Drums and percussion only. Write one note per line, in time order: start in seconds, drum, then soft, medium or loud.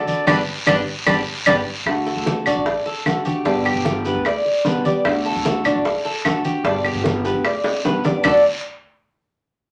0.07 high conga medium
0.07 short guiro medium
0.27 low bongo loud
0.27 high conga loud
0.27 long guiro loud
0.27 claves loud
0.67 low bongo medium
0.67 high conga loud
0.67 long guiro medium
0.67 claves loud
1.06 low bongo medium
1.06 high conga loud
1.06 claves loud
1.46 low bongo loud
1.46 high conga loud
1.46 long guiro loud
1.46 claves loud
1.86 high bongo medium
1.86 high conga soft
1.86 claves medium
2.07 high bongo soft
2.07 high conga soft
2.26 high bongo medium
2.26 high conga loud
2.26 short guiro medium
2.46 high bongo soft
2.46 high conga soft
2.46 low conga medium
2.46 short guiro medium
2.46 claves medium
2.66 high bongo medium
2.66 high conga soft
2.66 long guiro medium
2.86 high bongo soft
2.86 high conga soft
3.06 high bongo soft
3.06 low bongo medium
3.06 high conga medium
3.06 short guiro medium
3.06 claves medium
3.25 high conga medium
3.25 short guiro medium
3.45 high bongo medium
3.45 high conga soft
3.45 long guiro medium
3.66 high bongo soft
3.66 high conga soft
3.66 claves medium
3.85 high bongo medium
3.85 high conga loud
3.85 short guiro medium
4.05 high bongo soft
4.05 high conga soft
4.05 short guiro medium
4.25 high bongo medium
4.25 high conga soft
4.25 long guiro medium
4.25 claves medium
4.45 high bongo soft
4.45 high conga soft
4.65 high bongo soft
4.65 low bongo medium
4.65 high conga medium
4.65 short guiro medium
4.85 high conga medium
4.85 short guiro medium
5.05 high bongo medium
5.05 high conga soft
5.05 long guiro medium
5.05 claves medium
5.26 high bongo soft
5.26 high conga soft
5.45 high bongo medium
5.45 high conga medium
5.45 short guiro medium
5.64 high bongo soft
5.64 high conga soft
5.64 low conga medium
5.64 short guiro medium
5.64 claves medium
5.85 high bongo medium
5.85 high conga soft
5.85 long guiro medium
6.05 high bongo soft
6.05 high conga soft
6.25 high bongo soft
6.25 low bongo medium
6.25 high conga medium
6.25 short guiro medium
6.25 claves medium
6.45 high conga medium
6.45 short guiro medium
6.65 high bongo medium
6.65 high conga soft
6.65 long guiro medium
6.85 high bongo soft
6.85 high conga soft
6.85 claves medium
7.04 high bongo medium
7.04 high conga loud
7.04 short guiro medium
7.24 high bongo soft
7.24 high conga soft
7.24 short guiro medium
7.45 high bongo medium
7.45 high conga soft
7.45 long guiro medium
7.45 claves medium
7.64 high bongo loud
7.64 high conga soft
7.84 low bongo medium
7.84 high conga medium
7.84 short guiro medium
8.04 low bongo medium
8.04 high conga medium
8.04 short guiro medium
8.24 low bongo medium
8.24 low conga loud
8.24 long guiro loud
8.24 claves loud